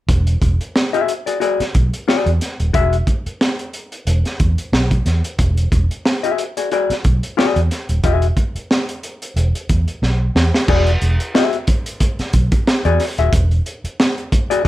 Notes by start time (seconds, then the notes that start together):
0.09 E1, kick, closed hi-hat
0.27 closed hi-hat
0.42 E1, kick, closed hi-hat
0.61 closed hi-hat
0.76 snare
0.93 F#4 G#4 E5, closed hi-hat
1.08 closed hi-hat
1.26 F#4 G#4 D5, closed hi-hat
1.40 F#4 G#4 D5, closed hi-hat
1.60 muted fingered electric bass stroke, snare, closed hi-hat
1.75 B1, kick, closed hi-hat
1.93 closed hi-hat
2.08 F#4 G#4 D5, snare
2.26 E2, closed hi-hat
2.41 snare, closed hi-hat
2.60 D#1, closed hi-hat
2.73 E1 F#4 G#4 E5, kick, closed hi-hat
2.93 closed hi-hat
3.07 kick, closed hi-hat
3.26 muted fingered electric bass stroke, closed hi-hat
3.41 snare
3.59 closed hi-hat
3.73 closed hi-hat
3.92 closed hi-hat
4.07 E1, closed hi-hat
4.25 snare, closed hi-hat
4.40 E2, kick, closed hi-hat
4.58 closed hi-hat
4.72 B1, snare
4.91 kick, closed hi-hat
5.06 E2, snare, closed hi-hat
5.24 closed hi-hat
5.39 E1, kick, closed hi-hat
5.57 closed hi-hat
5.72 E1, kick, closed hi-hat
5.91 closed hi-hat
6.05 snare
6.23 F#4 G#4 E5, closed hi-hat
6.38 closed hi-hat
6.57 F#4 G#4 D5, closed hi-hat
6.71 F#4 G#4 D5, closed hi-hat
6.90 muted fingered electric bass stroke, snare, closed hi-hat
7.04 B1, kick, closed hi-hat
7.23 closed hi-hat
7.37 F#4 G#4 D5, snare
7.56 E2, closed hi-hat
7.71 snare, closed hi-hat
7.89 D#1, closed hi-hat
8.04 E1 F#4 G#4 E5, kick, closed hi-hat
8.22 closed hi-hat
8.37 kick, closed hi-hat
8.55 muted fingered electric bass stroke, closed hi-hat
8.71 snare
8.89 closed hi-hat
9.03 closed hi-hat
9.22 closed hi-hat
9.36 E1, closed hi-hat
9.55 closed hi-hat
9.69 E2, kick, closed hi-hat
9.88 closed hi-hat
10.02 B1, snare
10.35 E2, snare
10.54 snare
10.68 E1 F#4 G#4 D5, kick, crash
10.87 closed hi-hat
11.01 E1, closed hi-hat
11.20 closed hi-hat
11.35 F#4 G#4 E5, snare
11.53 closed hi-hat
11.67 kick, closed hi-hat
11.86 closed hi-hat
12.00 kick, closed hi-hat
12.19 muted fingered electric bass stroke, snare, closed hi-hat
12.33 B1, kick, closed hi-hat
12.52 kick, closed hi-hat
12.67 snare
12.85 E2 F#4 G#4 D5, closed hi-hat
13.00 snare, open hi-hat
13.18 D#1 F#4 G#4 E5, closed hi-hat
13.33 E1, kick, closed hi-hat
13.51 closed hi-hat
13.66 closed hi-hat
13.84 muted fingered electric bass stroke, closed hi-hat
14.00 snare
14.18 closed hi-hat
14.32 kick, closed hi-hat
14.50 F#4 G#4 D5, closed hi-hat
14.65 F#4